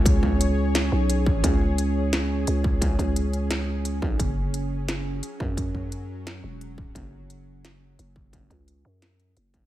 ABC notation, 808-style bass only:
X:1
M:4/4
L:1/8
Q:"Swing 16ths" 1/4=174
K:F#m
V:1 name="808-style bass" clef=bass
C,,4- C,, B,,,3 | C,,6 C,,2- | C,, C,,6 B,,, | F,,,6 z F,,- |
F,,4- F,, E,,,3 | F,,,6 F,,,2- | F,,, C,,2 F,,3 F,,,2 |]